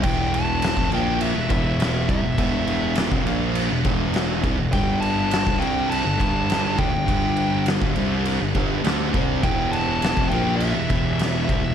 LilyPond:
<<
  \new Staff \with { instrumentName = "Lead electric guitar" } { \time 4/4 \key e \phrygian \tempo 4 = 102 g''8 a''4 g''8 e''4. e''8~ | e''4 r2. | g''8 a''4 g''8 a''4. g''8~ | g''4 r2. |
g''8 a''4 g''8 e''4. e''8 | }
  \new Staff \with { instrumentName = "Tonewheel organ" } { \time 4/4 \key e \phrygian e'1 | d'1 | a'1 | g'1 |
<g' e''>1 | }
  \new Staff \with { instrumentName = "Tonewheel organ" } { \clef bass \time 4/4 \key e \phrygian g1~ | g1 | g1~ | g1 |
e'1 | }
  \new Staff \with { instrumentName = "Distorted electric guitar" } { \clef bass \time 4/4 \key e \phrygian <e, b, e>4~ <e, b, e>16 <f, c>16 <ais, f ais>8. <e, b,>16 <e, b, e>4 <c g>16 <e, b,>16 | <e, b, e>4~ <e, b, e>16 <f, c>16 <ais, f ais>8. <e, b,>16 <e, b, e>4 <c g>16 <e, b,>16 | <g, d g>4~ <g, d g>16 <g, d>16 <c g c'>8. <g, d>16 <g, d g>4 <d a>16 <g, d>16 | <g, d g>4~ <g, d g>16 <g, d>16 <c g c'>8. <g, d>16 <g, d g>8 <d a d'>8 <c g c'>8 |
<e, b, e>4~ <e, b, e>16 <f, c>16 <ais, f ais>8. <e, b,>16 <e, b, e>4 <c g>16 <e, b,>16 | }
  \new Staff \with { instrumentName = "Distorted electric guitar" } { \clef bass \time 4/4 \key e \phrygian <e, b, e>4~ <e, b, e>16 <f, c>16 <ais, f ais>8. <e, b,>16 <e, b, e>4 <c g>16 <e, b,>16 | <e, b, e>4~ <e, b, e>16 <f, c>16 <ais, f ais>8. <e, b,>16 <e, b, e>4 <c g>16 <e, b,>16 | <g, d g>4~ <g, d g>16 <g, d>16 <c g c'>8. <g, d>16 <g, d g>4 <d a>16 <g, d>16 | <g, d g>4~ <g, d g>16 <g, d>16 <c g c'>8. <g, d>16 <g, d g>8 <d a d'>8 <c g c'>8 |
<e, b, e>4~ <e, b, e>16 <f, c>16 <ais, f ais>8. <e, b,>16 <e, b, e>4 <c g>16 <e, b,>16 | }
  \new Staff \with { instrumentName = "Picked electric bass" } { \clef bass \time 4/4 \key e \phrygian e,,4~ e,,16 f,,16 ais,,8. e,,16 e,,4 c,16 e,,16 | e,,4~ e,,16 f,,16 ais,,8. e,,16 e,,4 c,16 e,,16 | g,,4~ g,,16 g,,16 c,8. g,,16 g,,4 d,16 g,,16 | g,,4~ g,,16 g,,16 c,8. g,,16 g,,8 d,8 c,8 |
e,,4~ e,,16 f,,16 ais,,8. e,,16 e,,4 c,16 e,,16 | }
  \new DrumStaff \with { instrumentName = "Drums" } \drummode { \time 4/4 <cymc bd>8 cymc8 <cymc sn>16 bd16 cymc8 cymc8 <cymc bd>8 <cymc sn>8 <cymc bd>8 | <cymc bd>8 cymc8 <cymc sn>16 bd16 cymc8 cymc8 <cymc bd>8 <cymc sn>8 <cymc bd>8 | <cymc bd>8 cymc8 <cymc sn>16 bd16 cymc8 cymc8 <cymc bd>8 <cymc sn>8 <cymc bd>8 | <cymc bd>8 cymc8 <cymc sn>16 bd16 cymc8 cymc8 <cymc bd>8 <cymc sn>8 <cymc bd>8 |
<cymc bd>8 cymc8 <cymc sn>16 bd16 cymc8 cymc8 <cymc bd>8 <cymc sn>8 <cymc bd>8 | }
>>